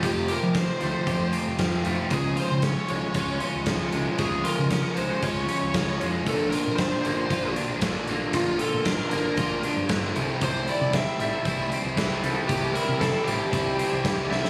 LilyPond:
<<
  \new Staff \with { instrumentName = "Lead electric guitar" } { \time 4/4 \key c \mixolydian \tempo 4 = 116 g'8 bes'8 c''8 c''4 r4. | aes'8 c''8 des''8 des''4 r4. | aes'8 bes'4 c''8 des''4. r8 | a'8 bes'8 c''8 c''4 r4. |
f'8 a'8 bes'8 bes'4 r4. | c''8 d''8 e''8 e''4 r4. | g'8 bes'8 a'8 g'2 e''8 | }
  \new Staff \with { instrumentName = "Overdriven electric guitar" } { \time 4/4 \key c \mixolydian <f a c' g'>8 g'8 c'8 a8 g'8 c'8 f8 a8 | des8 f'8 des'8 aes8 f'8 des'8 f8 aes8 | des8 f'8 des'8 aes8 f'8 des'8 f8 aes8 | bes,8 f'8 d'8 bes8 f'8 d'8 d8 bes8 |
bes,8 f'8 d'8 bes8 f'8 d'8 d8 c8 | c8 e'8 c'8 g8 e'8 c'8 e8 g8 | c8 e'8 c'8 g8 e'8 c'8 e8 g8 | }
  \new Staff \with { instrumentName = "Overdriven electric guitar" } { \time 4/4 \key c \mixolydian <f, c f a c' f'>4. <f a c' f'>8 <f, c f a c' f'>8 <f a c' f'>8 <f a c' f'>8 <f a c' f'>8 | <des f aes des' f'>4. <aes des' f'>8 <des f aes des' f'>8 <aes des' f'>8 <f aes des' f'>8 <aes des' f'>8 | <des f aes des' f'>4. <aes des' f'>8 <des f aes des' f'>8 <aes des' f'>8 <f aes des' f'>8 <aes des' f'>8 | <bes, d bes d' f'>4. <bes d' f'>8 <bes, d bes d' f'>8 <bes d' f'>8 <d bes d' f'>8 <bes d' f'>8 |
<bes, d bes d' f'>4. <bes d' f'>8 <bes, d bes d' f'>8 <bes d' f'>8 <d bes d' f'>8 <c e g c' e'>8 | <c e g c' e'>4. <g c' e'>8 <c e g c' e'>8 <g c' e'>8 <e g c' e'>8 <g c' e'>8 | <c e g c' e'>4. <g c' e'>8 <c e g c' e'>8 <g c' e'>8 <e g c' e'>8 <g c' e'>8 | }
  \new Staff \with { instrumentName = "Fingered electric bass" } { \clef bass \time 4/4 \key c \mixolydian f,8 r16 f8 r16 d,16 r16 f,8 r16 f,8. f,16 r16 | des,8 r16 des8 r16 c,16 r16 des,8 r16 des,8. des,16 r16 | des,8 r16 des8 r16 c,16 r16 des,8 r16 des,8. f,16 r16 | bes,,8 r16 bes,8 r16 g,,16 r16 bes,,8 r16 bes,,8. bes,,16 r16 |
bes,,8 r16 bes,8 r16 g,,16 r16 bes,,8 r16 g,8. c,16 r16 | c,8 r16 c8 r16 a,,16 r16 c,8 r16 c,8. c,16 r16 | c,8 r16 c8 r16 a,,16 r16 c,8 r16 c,8. c,16 r16 | }
  \new DrumStaff \with { instrumentName = "Drums" } \drummode { \time 4/4 <hh bd>8 hh8 <hh bd sn>8 hh8 <hh bd>8 hh8 <hh bd sn>8 hh8 | <hh bd>8 hh8 <hh bd sn>8 hh8 <hh bd>8 hh8 <hh bd sn>8 hh8 | <hh bd>8 hh8 <hh bd sn>8 hh8 <hh bd>8 hh8 <hh bd sn>8 hh8 | <hh bd>8 hh8 <hh bd sn>8 hh8 <hh bd>8 hh8 <hh bd sn>8 hh8 |
<hh bd>8 hh8 <hh bd sn>8 hh8 <hh bd>8 hh8 <hh bd sn>8 hh8 | <hh bd>8 hh8 <hh bd sn>8 hh8 <hh bd>8 hh8 <hh bd sn>8 hh8 | <hh bd>8 hh8 <hh bd sn>8 hh8 <hh bd>8 hh8 <hh bd sn>8 sn16 sn16 | }
>>